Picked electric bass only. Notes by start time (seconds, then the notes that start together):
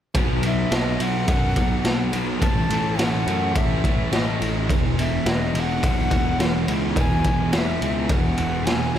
0.15 B1
0.71 B1
1.00 B1
1.28 F#2
1.56 B1
1.85 B1
2.13 B1
2.41 A1
2.70 A1
2.99 A1
3.27 F#2
3.56 A1
3.84 A1
4.12 A1
4.41 A1
4.69 E1
5.26 E1
5.54 E1
5.83 B1
6.11 E1
6.40 E1
6.68 C#2
6.96 E1
7.25 E1
7.53 E1
7.82 C#2
8.09 E1
8.38 E1
8.66 E1
8.95 E1